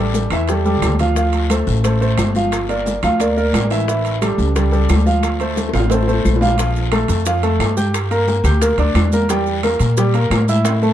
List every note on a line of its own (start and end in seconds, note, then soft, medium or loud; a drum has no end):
0.00 0.25 A1 medium
0.00 0.25 G3 medium
0.00 0.25 G4 medium
0.00 0.26 A4 medium
0.14 high bongo medium
0.14 high conga medium
0.14 low timbale medium
0.14 short guiro medium
0.14 maracas medium
0.30 0.78 E2 medium
0.30 0.45 E3 medium
0.30 0.46 E4 medium
0.30 0.46 E5 medium
0.30 high bongo soft
0.30 high conga soft
0.30 high timbale loud
0.30 short guiro medium
0.30 claves medium
0.30 maracas soft
0.48 0.63 G3 medium
0.48 0.63 G4 medium
0.48 0.63 A4 medium
0.48 high bongo medium
0.48 high conga soft
0.48 high timbale medium
0.48 long guiro medium
0.48 maracas medium
0.65 0.93 G3 medium
0.65 0.93 G4 medium
0.65 0.94 A4 medium
0.65 high bongo soft
0.65 high conga medium
0.65 maracas soft
0.76 low conga medium
0.82 1.61 D2 medium
0.82 high bongo soft
0.82 low bongo medium
0.82 high timbale medium
0.82 low timbale medium
0.82 short guiro medium
0.82 claves medium
0.82 maracas medium
0.88 low conga medium
0.99 1.14 F3 medium
0.99 1.14 F4 medium
0.99 1.14 F5 medium
0.99 low conga medium
0.99 high timbale medium
0.99 short guiro medium
0.99 maracas soft
1.16 1.44 F3 medium
1.16 1.44 F4 medium
1.16 1.44 F5 medium
1.16 high bongo medium
1.16 high conga soft
1.16 long guiro medium
1.16 maracas medium
1.33 high bongo soft
1.33 high conga soft
1.33 high timbale medium
1.33 maracas soft
1.49 1.78 A3 medium
1.49 1.78 A4 medium
1.49 1.78 C5 medium
1.49 high bongo medium
1.49 high conga medium
1.49 high timbale medium
1.49 low timbale medium
1.49 short guiro medium
1.49 claves medium
1.49 maracas medium
1.67 2.14 A1 loud
1.67 high bongo soft
1.67 short guiro medium
1.67 maracas soft
1.84 1.98 A3 medium
1.84 1.98 A4 medium
1.84 1.98 C5 medium
1.84 high bongo medium
1.84 high conga soft
1.84 high timbale medium
1.84 long guiro medium
1.84 maracas medium
2.01 2.29 A3 medium
2.01 2.29 A4 medium
2.01 2.29 C5 medium
2.01 high bongo soft
2.01 high conga soft
2.01 maracas soft
2.18 2.97 G1 medium
2.18 high bongo soft
2.18 low bongo medium
2.18 high conga medium
2.18 high timbale medium
2.18 low timbale medium
2.18 short guiro medium
2.18 claves medium
2.18 maracas medium
2.35 2.63 F3 medium
2.35 2.63 F4 medium
2.35 2.63 F5 medium
2.35 high conga medium
2.35 short guiro medium
2.35 maracas soft
2.51 high bongo medium
2.51 high timbale medium
2.51 long guiro medium
2.51 claves medium
2.51 maracas medium
2.69 2.97 A#3 medium
2.69 2.97 A#4 medium
2.69 2.97 D5 medium
2.69 high bongo soft
2.69 high conga soft
2.69 high timbale medium
2.69 maracas soft
2.86 high bongo medium
2.86 high conga medium
2.86 low timbale medium
2.86 short guiro medium
2.86 maracas medium
3.03 3.50 D2 medium
3.03 3.17 F3 medium
3.03 3.17 F4 medium
3.03 3.18 F5 medium
3.03 high bongo soft
3.03 high conga soft
3.03 high timbale medium
3.03 short guiro medium
3.03 claves medium
3.03 maracas soft
3.19 3.34 A#3 medium
3.19 3.34 A#4 medium
3.19 3.34 D5 medium
3.19 high bongo medium
3.19 high conga soft
3.19 high timbale medium
3.19 long guiro medium
3.19 maracas medium
3.37 3.65 A#3 medium
3.37 3.65 A#4 medium
3.37 3.65 D5 medium
3.37 high bongo soft
3.37 high conga soft
3.37 maracas soft
3.53 4.32 A1 medium
3.53 high bongo soft
3.53 low bongo medium
3.53 high conga medium
3.53 high timbale medium
3.53 low timbale medium
3.53 short guiro medium
3.53 claves medium
3.53 maracas medium
3.70 3.84 E3 medium
3.70 3.85 E4 medium
3.70 3.85 E5 medium
3.70 high timbale medium
3.70 short guiro medium
3.70 maracas soft
3.88 4.15 E3 medium
3.88 4.16 E4 medium
3.88 4.16 E5 medium
3.88 high bongo medium
3.88 high conga soft
3.88 long guiro medium
3.88 maracas medium
4.05 high bongo soft
4.05 high conga soft
4.05 high timbale medium
4.05 maracas soft
4.22 4.49 G3 medium
4.22 4.49 G4 medium
4.22 4.50 A4 medium
4.22 high bongo medium
4.22 high conga medium
4.22 high timbale loud
4.22 low timbale medium
4.22 short guiro medium
4.22 claves medium
4.22 maracas medium
4.38 4.86 C#2 loud
4.38 high bongo soft
4.38 high conga soft
4.38 short guiro medium
4.38 maracas soft
4.56 4.69 G3 medium
4.56 4.70 G4 medium
4.56 4.70 A4 medium
4.56 high bongo medium
4.56 high conga soft
4.56 high timbale medium
4.56 long guiro medium
4.56 maracas medium
4.72 5.00 G3 medium
4.72 5.00 G4 medium
4.72 5.00 A4 medium
4.72 high bongo soft
4.72 high conga soft
4.72 maracas soft
4.89 5.68 D2 medium
4.89 high bongo soft
4.89 low bongo medium
4.89 high conga medium
4.89 high timbale medium
4.89 low timbale medium
4.89 short guiro medium
4.89 claves medium
4.89 maracas medium
5.06 5.34 F3 medium
5.06 5.34 F4 medium
5.06 5.34 F5 medium
5.06 high conga medium
5.06 short guiro medium
5.06 maracas soft
5.23 high bongo medium
5.23 high conga soft
5.23 high timbale medium
5.23 long guiro medium
5.23 claves medium
5.23 maracas medium
5.40 5.68 A3 medium
5.40 5.68 A4 medium
5.40 5.68 C5 medium
5.40 high bongo soft
5.40 high conga soft
5.40 high timbale medium
5.40 maracas soft
5.56 high bongo medium
5.56 high conga medium
5.56 low timbale medium
5.56 short guiro medium
5.56 maracas medium
5.69 high bongo medium
5.73 6.21 A1 medium
5.73 5.87 F3 medium
5.73 5.88 F4 medium
5.73 5.88 F5 medium
5.73 high conga soft
5.73 high timbale medium
5.73 short guiro medium
5.73 claves medium
5.73 maracas soft
5.80 low bongo loud
5.90 6.05 A3 medium
5.90 6.05 A4 medium
5.90 6.05 C5 medium
5.90 high bongo medium
5.90 high conga soft
5.90 high timbale medium
5.90 long guiro medium
5.90 maracas medium
6.03 low bongo medium
6.07 6.35 A3 medium
6.07 6.36 A4 medium
6.07 6.36 C5 medium
6.07 high conga soft
6.07 maracas soft
6.14 low bongo medium
6.25 7.04 A#1 medium
6.25 low bongo medium
6.25 high conga medium
6.25 short guiro medium
6.25 claves medium
6.25 maracas medium
6.36 low bongo medium
6.41 6.55 F3 medium
6.41 6.56 F4 medium
6.41 6.56 F5 medium
6.41 high conga medium
6.41 low timbale medium
6.41 short guiro medium
6.41 maracas soft
6.48 low bongo medium
6.58 6.87 F3 medium
6.58 6.87 F4 medium
6.58 6.87 F5 medium
6.58 high bongo medium
6.58 high conga soft
6.58 high timbale medium
6.58 long guiro medium
6.58 maracas loud
6.76 high bongo soft
6.76 high conga soft
6.76 maracas soft
6.92 7.20 A3 medium
6.92 7.20 A4 medium
6.92 7.21 A5 medium
6.92 high bongo medium
6.92 high conga medium
6.92 high timbale loud
6.92 low timbale medium
6.92 short guiro medium
6.92 claves medium
6.92 maracas soft
7.08 7.56 F2 loud
7.08 high bongo soft
7.08 high conga soft
7.08 high timbale medium
7.08 short guiro medium
7.08 maracas medium
7.26 7.40 F3 medium
7.26 7.41 F4 medium
7.26 7.41 F5 medium
7.26 high bongo medium
7.26 high conga soft
7.26 long guiro medium
7.26 maracas medium
7.43 7.71 A3 medium
7.43 7.71 A4 medium
7.43 7.71 A5 medium
7.43 high conga soft
7.43 high timbale medium
7.43 maracas soft
7.59 8.39 G2 medium
7.59 high bongo soft
7.59 low bongo medium
7.59 high conga soft
7.59 high timbale medium
7.59 low timbale medium
7.59 short guiro medium
7.59 claves medium
7.59 maracas soft
7.77 8.05 G4 medium
7.77 8.05 G5 medium
7.77 8.05 G6 medium
7.77 high bongo soft
7.77 high conga medium
7.77 short guiro medium
7.77 maracas medium
7.94 high bongo medium
7.94 high timbale medium
7.94 long guiro medium
7.94 claves medium
7.94 maracas medium
8.11 8.39 A#3 medium
8.11 8.39 A#4 medium
8.11 8.39 A#5 medium
8.11 high bongo soft
8.11 high conga soft
8.11 high timbale medium
8.11 maracas soft
8.28 high bongo medium
8.28 high conga medium
8.28 low timbale medium
8.28 short guiro medium
8.28 maracas soft
8.44 8.76 D2 loud
8.44 8.59 G4 medium
8.44 8.59 G5 medium
8.44 8.59 G6 medium
8.44 high conga soft
8.44 low conga medium
8.44 high timbale medium
8.44 short guiro medium
8.44 claves medium
8.44 maracas medium
8.61 8.76 A#3 medium
8.61 8.76 A#4 medium
8.61 8.76 A#5 medium
8.61 high bongo medium
8.61 high conga soft
8.61 high timbale medium
8.61 long guiro medium
8.61 maracas medium
8.78 8.94 D2 medium
8.78 9.07 D4 medium
8.78 9.07 D5 medium
8.78 9.07 D6 medium
8.78 high conga soft
8.78 high timbale medium
8.78 maracas soft
8.95 9.74 E2 medium
8.95 high bongo soft
8.95 low bongo medium
8.95 high conga medium
8.95 high timbale medium
8.95 low timbale medium
8.95 short guiro medium
8.95 claves medium
8.95 maracas soft
9.12 9.27 A#3 medium
9.12 9.27 A#4 medium
9.12 9.27 A#5 medium
9.12 high bongo soft
9.12 high conga loud
9.12 short guiro medium
9.12 maracas medium
9.29 9.57 G3 medium
9.29 9.58 G4 medium
9.29 9.58 G5 medium
9.29 high bongo medium
9.29 high conga soft
9.29 high timbale medium
9.29 long guiro medium
9.29 maracas loud
9.46 high bongo soft
9.46 high conga soft
9.46 maracas soft
9.63 9.91 A#3 medium
9.63 9.92 A#4 medium
9.63 9.92 A#5 medium
9.63 high bongo medium
9.63 high conga medium
9.63 high timbale medium
9.63 low timbale medium
9.63 short guiro medium
9.63 claves medium
9.63 maracas soft
9.79 10.27 A#2 loud
9.79 high bongo soft
9.79 high conga soft
9.79 high timbale medium
9.79 short guiro medium
9.79 maracas medium
9.97 10.11 G3 medium
9.97 10.12 G4 medium
9.97 10.12 G5 medium
9.97 high bongo medium
9.97 high conga soft
9.97 long guiro medium
9.97 maracas medium
10.14 10.42 A#3 medium
10.14 10.42 A#4 medium
10.14 10.43 A#5 medium
10.14 high conga soft
10.14 high timbale medium
10.14 maracas soft
10.30 10.93 A2 medium
10.30 high bongo soft
10.30 low bongo medium
10.30 high conga soft
10.30 high timbale loud
10.30 low timbale medium
10.30 short guiro medium
10.30 claves medium
10.30 maracas soft
10.48 10.76 E4 medium
10.48 10.76 E5 medium
10.48 10.77 E6 medium
10.48 high bongo soft
10.48 high conga medium
10.48 short guiro medium
10.48 maracas medium
10.65 high bongo medium
10.65 high conga soft
10.65 high timbale loud
10.65 long guiro medium
10.65 claves medium
10.65 maracas medium
10.82 10.93 A3 medium
10.82 10.93 A4 medium
10.82 10.93 A5 medium
10.82 high bongo soft
10.82 high conga soft
10.82 maracas soft